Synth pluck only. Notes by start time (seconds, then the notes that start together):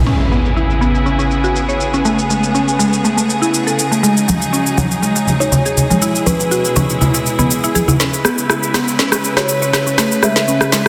0.07 C#4
0.32 B3
0.57 E4
0.81 B3
1.06 C#4
1.19 C#4
1.44 F#4
1.69 C#5
1.94 C#4
2.05 A3
2.30 G#3
2.55 C#4
2.79 G#3
3.05 A3
3.17 A3
3.42 E4
3.67 A4
3.92 A3
4.03 G#3
4.28 F#3
4.53 C#4
4.78 F#3
5.02 G#3
5.15 G#3
5.40 D#4
5.66 G#4
5.90 G#3
6.02 E4
6.27 C#4
6.51 F#4
6.76 C#4
7.01 E4
7.14 E4
7.39 B3
7.64 E4
7.75 G#4
7.88 E4
8.00 C#4
8.25 B3
8.50 E4
8.74 B3
8.99 C#4
9.13 C#4
9.37 F#4
9.62 C#5
9.87 C#4
9.98 A3
10.23 G#3
10.48 C#4
10.73 G#3